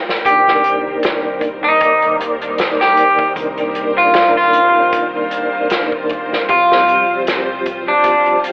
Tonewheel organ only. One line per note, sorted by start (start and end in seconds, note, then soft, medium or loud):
0.22 1.57 D#3 medium
0.22 1.59 A#3 medium
0.30 1.61 D4 medium
1.60 3.31 D#3 medium
1.60 3.33 A#3 medium
1.67 3.34 D5 medium
3.34 4.69 D#3 medium
3.34 4.70 A#3 medium
3.41 4.72 D4 medium
4.71 6.42 D#3 medium
4.71 6.44 A#3 medium
4.79 6.46 D4 medium
6.45 7.80 F3 medium
6.45 7.82 G3 medium
6.53 7.84 C4 medium
7.82 8.52 F3 medium
7.82 8.52 G3 medium
7.90 8.52 C4 medium